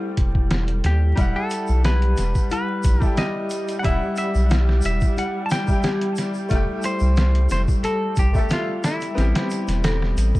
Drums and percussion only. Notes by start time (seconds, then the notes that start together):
0.17 kick, closed hi-hat
0.35 kick
0.51 snare, closed hi-hat
0.68 closed hi-hat
0.84 snare, closed hi-hat
1.17 kick, closed hi-hat, shaker
1.50 closed hi-hat, shaker
1.67 shaker
1.84 snare, closed hi-hat, shaker
2.02 closed hi-hat
2.17 snare, closed hi-hat, shaker
2.35 kick, shaker
2.50 closed hi-hat, shaker
2.83 kick, closed hi-hat, shaker
3.02 kick, shaker
3.17 snare, closed hi-hat, shaker
3.50 closed hi-hat, shaker
3.68 closed hi-hat, shaker
3.83 kick, closed hi-hat, shaker
4.16 closed hi-hat, shaker
4.35 shaker
4.50 snare, closed hi-hat, shaker
4.69 snare
4.82 closed hi-hat, shaker
5.01 kick, shaker
5.17 closed hi-hat, shaker
5.50 snare, closed hi-hat, shaker
5.67 kick, shaker
5.83 snare, closed hi-hat, shaker
6.01 closed hi-hat
6.16 snare, closed hi-hat, shaker
6.34 shaker
6.49 kick, closed hi-hat, shaker
6.82 closed hi-hat, shaker
6.99 shaker
7.16 snare, closed hi-hat, shaker
7.35 closed hi-hat
7.49 snare, closed hi-hat, shaker
7.68 kick, shaker
7.84 closed hi-hat, shaker
8.16 kick, closed hi-hat, shaker
8.34 kick, shaker
8.49 snare, closed hi-hat, shaker
8.84 snare, closed hi-hat, shaker
9.01 closed hi-hat, shaker
9.17 snare, closed hi-hat, shaker
9.35 snare, closed hi-hat
9.50 closed hi-hat, shaker
9.68 snare, closed hi-hat, shaker
9.84 snare, closed hi-hat, shaker
10.02 snare
10.17 closed hi-hat, shaker
10.35 kick, shaker